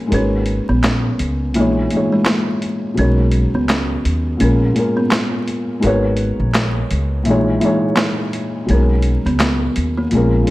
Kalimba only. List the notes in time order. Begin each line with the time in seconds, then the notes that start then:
Already playing: A#3
0.14 C#4
0.69 B3
0.84 C#4
1.56 A#3
2.12 G#3
2.27 A#3
2.99 C#4
3.55 B3
3.70 C#4
4.41 C#4
4.97 B3
5.12 A#3
7.98 A#3
8.71 C#4
9.26 B3
9.41 B3
9.98 A#3